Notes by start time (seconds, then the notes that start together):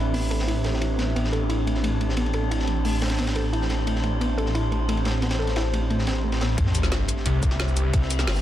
Already playing: A1 A3 C4 D4 G4 B4 E5
0.14 B3, open hi-hat
0.31 A4, ride
0.39 snare
0.48 E4, ride
0.64 A4, snare, ride
0.74 snare
0.81 E4, ride
0.98 B3, snare, ride
1.15 A1 B3 C5, ride
1.22 A5, snare
1.32 A4, ride
1.49 E4, ride
1.66 A3, ride
1.75 snare
1.83 A3, ride
2.00 A3, ride
2.09 snare
2.17 B3, ride
2.26 ride
2.33 A4, ride
2.51 E4, ride
2.60 snare
2.67 A3, ride
2.85 A3, open hi-hat
3.02 A3, snare, ride
3.10 snare, ride
3.18 B3, snare, ride
3.27 snare, ride
3.35 A4, ride
3.53 E4, ride
3.62 snare
3.70 A3, snare, ride
3.87 A3, ride
3.96 snare
4.03 A3, ride
4.21 B3, ride
4.38 A4, ride
4.46 snare
4.55 E4, ride
4.71 A3, ride
4.88 A3, ride
4.97 ride
5.05 A3, snare, ride
5.22 B3, snare, ride
5.31 snare, ride
5.39 A4
5.47 snare, ride
5.56 E4, snare, ride
5.73 A3, ride
5.90 A3, ride
5.99 snare
6.07 snare, ride
6.15 ride
6.24 A3
6.32 snare, ride
6.41 B3, snare, ride
6.58 A1 A3 E4 G4 B4, kick, closed hi-hat, ride, sub drop
6.66 snare
6.70 E5, ride
6.75 C4, closed hi-hat, cabasa
6.83 snare, cabasa
6.92 G1, snare, closed hi-hat, ride
7.08 closed hi-hat, ride, cabasa
7.17 snare
7.26 C2, closed hi-hat, ride
7.43 C2, kick, closed hi-hat, ride, cabasa
7.50 snare
7.60 snare, closed hi-hat, ride
7.68 ride, cabasa
7.77 closed hi-hat, ride, cabasa
7.93 kick, closed hi-hat, ride
8.03 snare
8.10 closed hi-hat, ride, cabasa
8.19 snare, cabasa
8.27 G1, snare, closed hi-hat, open hi-hat
8.36 cabasa